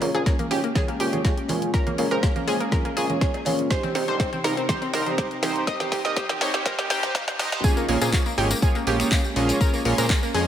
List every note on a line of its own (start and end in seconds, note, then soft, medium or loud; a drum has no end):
0.00 0.10 A#1 loud
0.00 3.67 G#3 medium
0.00 3.67 A#3 medium
0.00 0.10 A#3 medium
0.00 0.08 A#3 medium
0.00 3.67 C#4 medium
0.00 0.10 C#4 medium
0.00 0.10 F4 medium
0.00 0.10 G#4 medium
0.00 0.10 C#5 loud
0.00 open hi-hat loud
0.00 cowbell medium
0.14 0.30 A#2 medium
0.14 0.22 A#3 medium
0.14 0.22 C#4 medium
0.14 0.22 F4 medium
0.14 0.22 G#4 medium
0.14 0.21 G#4 medium
0.14 0.22 C5 medium
0.14 closed hi-hat soft
0.26 0.35 A#3 medium
0.26 0.33 A#3 medium
0.26 0.35 C#4 medium
0.26 0.35 F4 medium
0.26 0.35 G#4 medium
0.26 0.35 C#5 medium
0.26 kick loud
0.26 snare soft
0.26 closed hi-hat medium
0.39 0.45 A#3 medium
0.39 closed hi-hat soft
0.39 high conga medium
0.51 0.67 G#1 medium
0.51 0.60 A#3 medium
0.51 0.60 C#4 medium
0.51 0.60 F4 medium
0.51 0.58 G4 medium
0.51 0.60 G#4 medium
0.51 0.60 C#5 loud
0.51 open hi-hat medium
0.64 0.70 A#3 medium
0.64 closed hi-hat soft
0.75 0.89 A#3 medium
0.75 0.89 C#4 medium
0.75 0.89 F4 medium
0.75 0.89 G#4 medium
0.75 0.82 G#4 medium
0.75 0.89 C#5 medium
0.75 kick loud
0.75 snare soft
0.75 closed hi-hat medium
0.75 high conga medium
0.88 0.94 A#3 medium
0.88 closed hi-hat soft
1.00 1.16 A#1 medium
1.00 1.09 A#3 medium
1.00 1.09 C#4 medium
1.00 1.09 F4 medium
1.00 1.64 G4 medium
1.00 1.09 G#4 medium
1.00 1.09 C#5 loud
1.00 open hi-hat loud
1.12 1.21 A#3 medium
1.12 1.21 C#4 medium
1.12 1.21 F4 medium
1.12 1.21 G#4 medium
1.12 1.21 C#5 medium
1.12 closed hi-hat soft
1.12 cowbell medium
1.12 high conga medium
1.25 1.33 A#3 medium
1.25 1.33 C#4 medium
1.25 1.33 F4 medium
1.25 1.33 G#4 medium
1.25 1.33 C#5 medium
1.25 kick loud
1.25 snare medium
1.25 closed hi-hat medium
1.38 closed hi-hat soft
1.49 1.65 A#1 loud
1.49 1.71 A#3 medium
1.49 1.71 C#4 medium
1.49 1.71 F4 medium
1.49 1.71 G#4 medium
1.49 1.71 C#5 loud
1.49 open hi-hat medium
1.49 cowbell medium
1.49 high conga medium
1.62 closed hi-hat soft
1.74 1.96 A#3 medium
1.74 1.96 C#4 medium
1.74 1.96 F4 medium
1.74 1.96 G#4 medium
1.74 1.81 A#4 medium
1.74 1.96 C#5 medium
1.74 kick loud
1.74 snare medium
1.74 closed hi-hat medium
1.87 1.93 A#3 medium
1.87 closed hi-hat soft
1.87 high conga medium
1.98 2.07 A#1 loud
1.98 2.05 A#3 medium
1.98 2.07 A#3 medium
1.98 2.07 C#4 medium
1.98 2.07 F4 medium
1.98 2.07 G#4 medium
1.98 2.07 C#5 loud
1.98 open hi-hat loud
1.98 cowbell medium
2.11 2.26 A#2 medium
2.11 2.19 A#3 medium
2.11 2.19 C#4 medium
2.11 2.19 F4 medium
2.11 2.19 G#4 medium
2.11 2.17 A#4 medium
2.11 2.19 C5 loud
2.11 closed hi-hat soft
2.23 2.30 A#3 medium
2.23 2.32 A#3 medium
2.23 2.32 C#4 medium
2.23 2.32 C#5 medium
2.23 kick loud
2.23 snare medium
2.23 closed hi-hat medium
2.36 2.42 A#3 medium
2.36 closed hi-hat soft
2.36 high conga medium
2.47 2.64 F2 medium
2.47 2.56 A#3 medium
2.47 2.56 C#4 medium
2.47 2.56 F4 medium
2.47 2.54 G#4 medium
2.47 2.56 G#4 medium
2.47 2.56 C#5 loud
2.47 open hi-hat medium
2.60 2.67 A#3 medium
2.60 closed hi-hat soft
2.72 2.86 A#3 medium
2.72 2.86 C#4 medium
2.72 2.86 F4 medium
2.72 2.86 G#4 medium
2.72 2.79 A#4 medium
2.72 2.86 C#5 medium
2.72 kick loud
2.72 snare medium
2.72 closed hi-hat medium
2.72 high conga medium
2.85 2.91 A#3 medium
2.85 closed hi-hat soft
2.97 3.13 A#1 loud
2.97 3.05 A#3 medium
2.97 3.05 C#4 medium
2.97 3.05 F4 medium
2.97 3.61 G#4 medium
2.97 3.05 G#4 medium
2.97 3.05 C#5 medium
2.97 open hi-hat loud
3.09 3.18 A#3 medium
3.09 3.18 C#4 medium
3.09 3.18 F4 medium
3.09 3.18 G#4 medium
3.09 3.18 C#5 medium
3.09 closed hi-hat soft
3.09 high conga medium
3.21 3.30 A#3 medium
3.21 3.30 C#4 medium
3.21 3.30 F4 medium
3.21 3.30 G#4 medium
3.21 3.30 C#5 medium
3.21 kick loud
3.21 snare medium
3.21 closed hi-hat medium
3.34 closed hi-hat soft
3.34 cowbell medium
3.45 3.62 A#1 medium
3.45 3.68 A#3 medium
3.45 3.68 C#4 medium
3.45 3.68 F4 medium
3.45 3.68 G#4 medium
3.45 3.68 C#5 loud
3.45 open hi-hat medium
3.45 cowbell medium
3.45 high conga medium
3.59 closed hi-hat soft
3.70 7.60 C3 medium
3.70 7.60 C4 medium
3.70 7.60 D#4 medium
3.70 3.92 D#4 medium
3.70 7.60 G4 loud
3.70 3.92 G4 medium
3.70 3.77 C5 medium
3.70 3.92 C5 medium
3.70 kick loud
3.70 snare medium
3.70 closed hi-hat medium
3.83 3.90 C4 medium
3.83 closed hi-hat soft
3.83 high conga medium
3.95 4.03 C2 loud
3.95 4.02 C4 medium
3.95 4.04 D#4 medium
3.95 4.04 G4 medium
3.95 4.04 C5 loud
3.95 snare medium
3.95 open hi-hat loud
3.95 cowbell medium
4.08 4.23 G1 medium
4.08 4.16 D#4 medium
4.08 4.16 G4 medium
4.08 4.16 A#4 medium
4.08 4.14 C5 medium
4.08 closed hi-hat soft
4.20 4.26 C4 medium
4.20 4.28 D#4 medium
4.20 4.28 G4 medium
4.20 4.28 C5 medium
4.20 kick loud
4.20 snare medium
4.20 closed hi-hat medium
4.33 4.39 C4 medium
4.33 closed hi-hat soft
4.33 high conga medium
4.44 4.60 A#1 medium
4.44 4.53 D#4 medium
4.44 4.53 G4 medium
4.44 4.51 A#4 medium
4.44 4.53 C5 loud
4.44 snare medium
4.44 open hi-hat loud
4.57 4.63 C4 medium
4.57 closed hi-hat soft
4.69 4.83 D#4 medium
4.69 4.83 G4 medium
4.69 4.76 C5 medium
4.69 4.83 C5 medium
4.69 kick loud
4.69 snare medium
4.69 closed hi-hat medium
4.69 high conga medium
4.82 4.88 C4 medium
4.82 closed hi-hat soft
4.93 5.10 C2 medium
4.93 5.02 D#4 medium
4.93 5.02 G4 medium
4.93 5.58 A#4 medium
4.93 5.02 C5 loud
4.93 snare medium
4.93 open hi-hat loud
5.06 5.14 D#4 medium
5.06 5.14 G4 medium
5.06 5.14 C5 medium
5.06 closed hi-hat soft
5.06 cowbell medium
5.06 high conga medium
5.18 5.27 D#4 medium
5.18 5.27 G4 medium
5.18 5.27 C5 medium
5.18 kick loud
5.18 snare medium
5.18 closed hi-hat medium
5.31 closed hi-hat soft
5.42 5.59 C2 loud
5.42 5.64 D#4 medium
5.42 5.64 G4 medium
5.42 5.64 C5 loud
5.42 snare medium
5.42 open hi-hat medium
5.42 cowbell medium
5.42 high conga medium
5.56 closed hi-hat soft
5.67 5.89 G4 medium
5.67 5.89 C5 medium
5.67 5.74 D#5 loud
5.67 kick loud
5.67 snare medium
5.67 closed hi-hat medium
5.80 5.86 G4 medium
5.80 snare medium
5.80 closed hi-hat soft
5.80 high conga medium
5.92 6.00 C2 loud
5.92 6.01 D#4 medium
5.92 5.99 G4 medium
5.92 6.01 G4 medium
5.92 6.01 C5 loud
5.92 kick medium
5.92 snare medium
5.92 open hi-hat loud
5.92 cowbell medium
6.05 6.13 D#4 medium
6.05 6.13 G4 medium
6.05 6.13 A#4 loud
6.05 6.11 D#5 medium
6.05 snare medium
6.05 closed hi-hat soft
6.16 6.25 D#4 medium
6.16 6.25 G4 medium
6.16 6.23 G4 medium
6.16 6.25 C5 medium
6.16 kick loud
6.16 snare loud
6.16 closed hi-hat medium
6.29 6.35 G4 medium
6.29 snare medium
6.29 closed hi-hat soft
6.29 high conga medium
6.41 6.57 G1 medium
6.41 6.50 D#4 medium
6.41 6.50 G4 medium
6.41 6.50 C5 loud
6.41 6.48 C#5 medium
6.41 snare loud
6.41 open hi-hat loud
6.54 6.60 G4 medium
6.54 snare medium
6.54 closed hi-hat soft
6.66 6.79 D#4 medium
6.66 6.79 G4 medium
6.66 6.72 A#4 medium
6.66 6.79 C5 medium
6.66 kick loud
6.66 snare loud
6.66 closed hi-hat medium
6.66 high conga medium
6.79 6.85 G4 medium
6.79 snare medium
6.79 closed hi-hat soft
6.90 7.06 C2 medium
6.90 6.99 D#4 medium
6.90 7.55 G4 medium
6.90 6.99 G4 medium
6.90 6.99 C5 medium
6.90 snare loud
6.90 open hi-hat loud
7.03 7.12 D#4 medium
7.03 7.12 G4 medium
7.03 7.12 C5 medium
7.03 snare medium
7.03 closed hi-hat soft
7.03 high conga medium
7.15 7.23 D#4 medium
7.15 7.24 G4 medium
7.15 7.23 F5 loud
7.15 kick loud
7.15 snare loud
7.15 closed hi-hat medium
7.28 snare medium
7.28 closed hi-hat soft
7.28 cowbell loud
7.39 7.55 A#1 medium
7.39 7.49 D#4 medium
7.39 7.49 G4 medium
7.39 7.49 D#5 loud
7.39 snare loud
7.39 open hi-hat loud
7.39 cowbell medium
7.39 high conga medium
7.52 7.60 D#4 medium
7.52 7.60 G4 medium
7.52 7.60 C5 loud
7.52 snare loud
7.52 closed hi-hat soft
7.64 10.47 G#3 medium
7.64 7.86 A#3 medium
7.64 10.47 A#3 medium
7.64 7.86 C#4 medium
7.64 10.47 C#4 medium
7.64 7.86 F4 medium
7.64 7.86 G#4 medium
7.64 7.71 G#4 medium
7.64 7.86 C#5 medium
7.64 kick loud
7.64 closed hi-hat medium
7.64 tambourine medium
7.77 7.83 A#3 medium
7.77 tambourine soft
7.89 7.97 A#1 loud
7.89 7.97 A#3 medium
7.89 7.95 A#3 medium
7.89 7.97 C#4 medium
7.89 7.97 F4 medium
7.89 7.97 G#4 medium
7.89 7.97 C#5 loud
7.89 open hi-hat loud
8.02 8.17 A#2 medium
8.02 8.09 A#3 medium
8.02 8.09 C#4 medium
8.02 8.09 F4 medium
8.02 8.09 G#4 medium
8.02 8.08 G#4 loud
8.02 8.09 C5 loud
8.02 closed hi-hat medium
8.02 tambourine medium
8.12 8.20 A#3 medium
8.12 8.22 A#3 medium
8.12 8.22 C#4 medium
8.12 8.22 F4 medium
8.12 8.22 G#4 medium
8.12 8.22 C#5 medium
8.12 kick loud
8.12 clap loud
8.12 closed hi-hat medium
8.12 tambourine medium
8.26 8.32 A#3 medium
8.26 tambourine soft
8.38 8.54 G#1 loud
8.38 8.46 A#3 medium
8.38 8.46 C#4 medium
8.38 8.46 F4 medium
8.38 8.45 G4 medium
8.38 8.46 G#4 medium
8.38 8.46 C#5 loud
8.38 open hi-hat loud
8.51 8.57 A#3 medium
8.51 closed hi-hat medium
8.51 tambourine medium
8.62 8.76 A#3 medium
8.62 8.76 C#4 medium
8.62 8.76 F4 medium
8.62 8.76 G#4 medium
8.62 8.69 G#4 medium
8.62 8.76 C#5 medium
8.62 kick loud
8.62 closed hi-hat medium
8.62 tambourine medium
8.75 8.81 A#3 medium
8.75 tambourine soft
8.87 9.03 A#1 medium
8.87 8.96 A#3 medium
8.87 8.96 C#4 medium
8.87 8.96 F4 medium
8.87 9.51 G4 medium
8.87 8.96 G#4 medium
8.87 8.96 C#5 loud
8.87 open hi-hat loud
9.00 9.08 A#3 medium
9.00 9.08 C#4 medium
9.00 9.08 F4 medium
9.00 9.08 G#4 medium
9.00 9.08 C#5 medium
9.00 finger snap medium
9.00 closed hi-hat medium
9.00 tambourine medium
9.12 9.20 A#3 medium
9.12 9.20 F4 medium
9.12 9.20 G#4 medium
9.12 kick loud
9.12 clap loud
9.12 closed hi-hat medium
9.12 tambourine medium
9.24 tambourine soft
9.36 9.52 A#1 loud
9.36 9.58 A#3 medium
9.36 9.58 C#4 medium
9.36 9.58 F4 medium
9.36 9.58 G#4 medium
9.36 9.58 C#5 loud
9.36 open hi-hat medium
9.49 closed hi-hat medium
9.49 tambourine medium
9.61 9.83 A#3 medium
9.61 9.83 C#4 medium
9.61 9.83 F4 medium
9.61 9.83 G#4 medium
9.61 9.67 A#4 loud
9.61 9.83 C#5 medium
9.61 kick loud
9.61 closed hi-hat medium
9.61 tambourine medium
9.74 9.80 A#3 medium
9.74 tambourine soft
9.85 9.93 A#1 loud
9.85 9.94 A#3 medium
9.85 9.92 A#3 medium
9.85 9.94 C#4 medium
9.85 9.94 F4 medium
9.85 9.94 G#4 medium
9.85 9.94 C#5 loud
9.85 open hi-hat loud
9.98 10.13 A#2 medium
9.98 10.06 A#3 medium
9.98 10.06 C#4 medium
9.98 10.06 F4 medium
9.98 10.06 G#4 medium
9.98 10.04 A#4 loud
9.98 10.06 C5 loud
9.98 closed hi-hat medium
9.98 tambourine medium
10.10 10.19 A#3 medium
10.10 10.17 A#3 medium
10.10 10.19 C#4 medium
10.10 10.19 F4 medium
10.10 10.19 G#4 medium
10.10 10.19 C#5 medium
10.10 kick loud
10.10 clap loud
10.10 closed hi-hat medium
10.10 tambourine medium
10.23 10.29 A#3 medium
10.23 tambourine soft
10.34 10.47 F2 medium
10.34 10.43 A#3 medium
10.34 10.43 C#4 medium
10.34 10.43 F4 medium
10.34 10.43 G#4 medium
10.34 10.41 G#4 medium
10.34 10.43 C#5 loud
10.34 open hi-hat loud